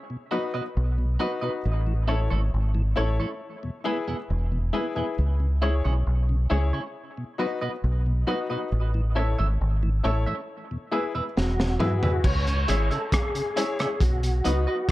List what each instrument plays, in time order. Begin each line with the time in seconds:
0.10 tonewheel organ B2
0.31 tonewheel organ F#3 B3 D#4, upright piano D#4 F#4 B4, clean electric guitar F#4 B4 D#5
0.54 tonewheel organ B2, upright piano F#4 B4, clean electric guitar F#4 B4 D#5
0.77 fingered electric bass B1
0.98 tonewheel organ B2
1.19 tonewheel organ F#3 B3 D#4, upright piano D#4 F#4 B4, clean electric guitar F#4 B4 D#5
1.41 tonewheel organ B2, upright piano D#4 F#4 B4, clean electric guitar F#4 B4 D#5
1.65 fingered electric bass A1
1.87 tonewheel organ A2 E3
2.08 tonewheel organ A3 C#4 E4, clean electric guitar E4 A4 C#5, upright piano E4 A4 C#5
2.30 fingered electric bass G#1, tonewheel organ A2 E3, clean electric guitar E4 A4 C#5
2.54 fingered electric bass G#1
2.75 tonewheel organ A2 E3
2.96 fingered electric bass A1, tonewheel organ A3 C#4 E4, upright piano E4 A4 C#5, clean electric guitar E4 A4 C#5
3.19 tonewheel organ A2 E3, clean electric guitar E4 A4 C#5
3.63 tonewheel organ E2 B2
3.84 tonewheel organ G#3 B3 E4, clean electric guitar B3 E4 G#4, upright piano E4 G#4 B4
4.08 tonewheel organ E2 B2, clean electric guitar B3 E4 G#4, upright piano G#4 B4
4.30 fingered electric bass E1
4.52 tonewheel organ E2 B2
4.73 tonewheel organ G#3 B3 E4, clean electric guitar B3 E4 G#4, upright piano E4 G#4 B4
4.95 tonewheel organ E2 B2, clean electric guitar B3 E4 G#4, upright piano E4 G#4 B4
5.18 fingered electric bass C#2
5.40 tonewheel organ C#3
5.61 tonewheel organ G#3 C#4 E4, upright piano E4 G#4 C#5, clean electric guitar E4 G#4 C#5
5.84 fingered electric bass B1, tonewheel organ C#3, clean electric guitar E4 G#4 C#5
6.07 fingered electric bass B1
6.29 tonewheel organ C#3
6.50 fingered electric bass C#2, tonewheel organ G#3 C#4 E4, upright piano E4 G#4 C#5, clean electric guitar E4 G#4 C#5
6.73 tonewheel organ C#3, clean electric guitar E4 G#4 C#5
7.17 tonewheel organ B2
7.38 tonewheel organ F#3 B3 D#4, upright piano D#4 F#4 B4, clean electric guitar F#4 B4 D#5
7.61 tonewheel organ B2, upright piano F#4 B4, clean electric guitar F#4 B4 D#5
7.84 fingered electric bass B1
8.06 tonewheel organ B2
8.27 tonewheel organ F#3 B3 D#4, upright piano D#4 F#4 B4, clean electric guitar F#4 B4 D#5
8.49 tonewheel organ B2, upright piano D#4 F#4 B4, clean electric guitar F#4 B4 D#5
8.72 fingered electric bass A1
8.94 tonewheel organ A2 E3
9.15 tonewheel organ A3 C#4 E4, upright piano E4 A4 C#5, clean electric guitar A4 C#5 E5
9.39 fingered electric bass G#1, tonewheel organ A2 E3, clean electric guitar A4 C#5 E5
9.61 fingered electric bass G#1
9.83 tonewheel organ A2 E3
10.03 fingered electric bass A1, tonewheel organ A3 C#4 E4, upright piano E4 A4 C#5, clean electric guitar A4 C#5 E5
10.26 tonewheel organ A2 E3, clean electric guitar A4 C#5 E5
10.71 tonewheel organ E2 B2
10.91 tonewheel organ G#3 B3 E4, upright piano E4 G#4 B4, clean electric guitar G#4 B4 E5
11.15 tonewheel organ E2 B2, upright piano G#4 B4, clean electric guitar G#4 B4 E5
11.37 fingered electric bass E1, tonewheel organ F#4, snare
11.59 tonewheel organ E2 B2, snare
11.80 tonewheel organ G#3 B3 E4, upright piano E4 G#4 B4, clean electric guitar G#4 B4 E5, mid tom
12.02 tonewheel organ E2 B2, upright piano E4 G#4 B4, clean electric guitar G#4 B4 E5, floor tom
12.24 fingered electric bass C#2, tonewheel organ C#5, kick, crash
12.47 tonewheel organ C#3, closed hi-hat
12.68 fingered electric bass G#1, tonewheel organ G#3 C#4 E4, upright piano E4 G#4 C#5, clean electric guitar G#4 C#5 E5, closed hi-hat
12.91 tonewheel organ C#3 A4, clean electric guitar G#4 C#5 E5, closed hi-hat
13.12 tonewheel organ G#4, kick, cross-stick, closed hi-hat
13.35 tonewheel organ C#3, closed hi-hat
13.56 tonewheel organ G#3 C#4 E4, upright piano E4 G#4 C#5, clean electric guitar G#4 C#5 E5, closed hi-hat
13.79 tonewheel organ C#3, clean electric guitar G#4 C#5 E5, cross-stick, closed hi-hat
14.00 fingered electric bass B1, tonewheel organ F#4, kick, closed hi-hat
14.23 tonewheel organ B2, closed hi-hat
14.44 fingered electric bass C#2, tonewheel organ F#3 B3 D#4, upright piano D#4 F#4 B4, clean electric guitar F#4 B4 D#5, closed hi-hat
14.67 clean electric guitar F#4 B4 D#5